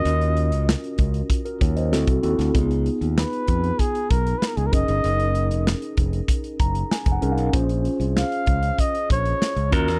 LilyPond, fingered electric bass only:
\new Staff \with { instrumentName = "Fingered electric bass" } { \clef bass \time 4/4 \key bes \minor \tempo 4 = 96 ees,8. des,8 r16 des,8 r8 ees,8 d,16 c,16 ees,16 d,16 | des,8. ees,8 r16 f,8 r8 ces,8 r16 des,16 ges,,16 g,,16 | ges,,8. f,,8 r16 f,,8 r8 ges,,8 r16 f,,16 c,16 ces,16 | bes,,8. c,8 r16 des,8 r8 bes,,8 r16 des,16 ees,16 e,16 | }